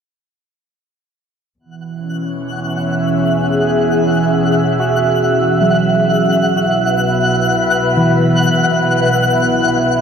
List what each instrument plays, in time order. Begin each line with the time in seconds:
1.59 double bass section E2, synth drone B2 E4, synth texture F#5 F#6
1.65 analog synth pad E3
1.95 analog synth pad C#4
2.54 analog synth pad E5
3.04 analog synth pad G#4
4.80 synth keys F#4
5.61 synth keys F#3
6.30 double bass section C2, analog synth pad B2
6.73 analog synth pad B4
7.97 synth keys E3